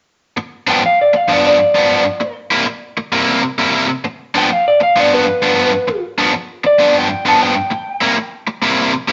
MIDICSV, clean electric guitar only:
0, 0, Header, 1, 2, 480
1, 0, Start_track
1, 0, Tempo, 458716
1, 390, Time_signature, 4, 2, 24, 8
1, 9545, End_track
2, 0, Start_track
2, 0, Title_t, "Clean electric guitar"
2, 0, Program_c, 0, 27
2, 736, Note_on_c, 0, 79, 77
2, 879, Note_off_c, 0, 79, 0
2, 897, Note_on_c, 0, 77, 68
2, 1039, Note_off_c, 0, 77, 0
2, 1061, Note_on_c, 0, 74, 76
2, 1214, Note_off_c, 0, 74, 0
2, 1214, Note_on_c, 0, 77, 87
2, 1385, Note_off_c, 0, 77, 0
2, 1385, Note_on_c, 0, 74, 74
2, 1521, Note_off_c, 0, 74, 0
2, 1533, Note_on_c, 0, 74, 76
2, 2455, Note_off_c, 0, 74, 0
2, 4582, Note_on_c, 0, 79, 81
2, 4738, Note_off_c, 0, 79, 0
2, 4738, Note_on_c, 0, 77, 68
2, 4881, Note_off_c, 0, 77, 0
2, 4894, Note_on_c, 0, 74, 72
2, 5040, Note_off_c, 0, 74, 0
2, 5052, Note_on_c, 0, 77, 89
2, 5226, Note_off_c, 0, 77, 0
2, 5226, Note_on_c, 0, 74, 82
2, 5366, Note_off_c, 0, 74, 0
2, 5380, Note_on_c, 0, 71, 88
2, 6298, Note_off_c, 0, 71, 0
2, 6974, Note_on_c, 0, 74, 95
2, 7274, Note_off_c, 0, 74, 0
2, 7307, Note_on_c, 0, 79, 63
2, 7601, Note_off_c, 0, 79, 0
2, 7623, Note_on_c, 0, 81, 71
2, 7764, Note_off_c, 0, 81, 0
2, 7773, Note_on_c, 0, 79, 78
2, 9160, Note_off_c, 0, 79, 0
2, 9545, End_track
0, 0, End_of_file